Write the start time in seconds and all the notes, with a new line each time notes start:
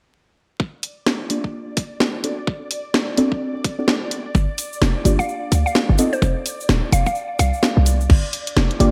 0.60 D5, kick
0.83 open hi-hat
1.06 snare
1.30 A#3 D4 F4 G4 D5, open hi-hat
1.44 kick
1.77 kick, open hi-hat
2.00 snare
2.24 C4 D4 F#4 A4 D5, open hi-hat
2.47 kick
2.71 open hi-hat
2.94 snare
3.17 C4 D4 F#4 A4 D5, open hi-hat
3.32 kick
3.64 kick, open hi-hat
3.79 C4 D4 F#4 A4 D5
3.88 snare
4.11 open hi-hat
4.35 G1, kick, shaker
4.58 open hi-hat, shaker
4.73 shaker
4.82 F1, snare, shaker
5.05 G1 A#3 D4 F4 G4 D5, open hi-hat, shaker
5.19 F5, kick, shaker
5.29 shaker
5.52 D2, kick, open hi-hat, shaker
5.66 F5, shaker
5.75 snare, shaker
5.89 G1
5.98 C4 D#4 F4 A4 D#5, open hi-hat, shaker
6.13 C5, shaker
6.22 F1, kick, shaker
6.46 open hi-hat, shaker
6.61 shaker
6.69 D#1, snare, shaker
6.92 F1 F5, open hi-hat, shaker
7.06 F5, kick, shaker
7.15 shaker
7.39 C2 F5, kick, open hi-hat, shaker
7.54 shaker
7.63 snare, shaker
7.77 C2
7.86 open hi-hat, shaker
8.01 shaker
8.10 G1 D6, kick, crash
8.33 open hi-hat
8.47 closed hi-hat
8.57 F1, snare
8.71 closed hi-hat
8.80 G1 A#3 D4 F4 G4 D5, open hi-hat